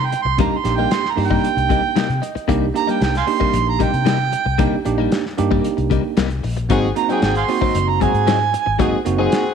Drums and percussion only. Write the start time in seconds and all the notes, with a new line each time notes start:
0.12 closed hi-hat
0.38 kick, closed hi-hat
0.65 snare, closed hi-hat
0.91 snare, closed hi-hat
1.05 snare
1.18 open hi-hat
1.31 kick
1.44 closed hi-hat
1.58 closed hi-hat
1.70 kick, closed hi-hat
1.96 snare, closed hi-hat
2.10 closed hi-hat
2.23 closed hi-hat
2.36 closed hi-hat
2.49 kick, closed hi-hat
2.76 closed hi-hat
2.89 closed hi-hat
3.02 snare, closed hi-hat
3.15 snare, closed hi-hat
3.27 open hi-hat
3.41 kick
3.54 closed hi-hat
3.80 kick, closed hi-hat
3.94 closed hi-hat
4.06 snare, closed hi-hat
4.33 closed hi-hat
4.59 kick, closed hi-hat
4.85 closed hi-hat
5.12 snare, closed hi-hat
5.26 snare
5.38 closed hi-hat
5.52 kick
5.64 closed hi-hat
5.78 closed hi-hat
5.91 kick, closed hi-hat
6.17 snare, closed hi-hat
6.30 closed hi-hat
6.44 open hi-hat
6.57 closed hi-hat
6.70 kick, closed hi-hat
6.96 closed hi-hat
7.10 closed hi-hat
7.22 snare, closed hi-hat
7.35 closed hi-hat
7.48 open hi-hat
7.62 kick
7.75 closed hi-hat
8.01 kick, closed hi-hat
8.15 closed hi-hat
8.27 snare, closed hi-hat
8.54 closed hi-hat
8.79 kick, closed hi-hat
9.06 closed hi-hat
9.32 snare, closed hi-hat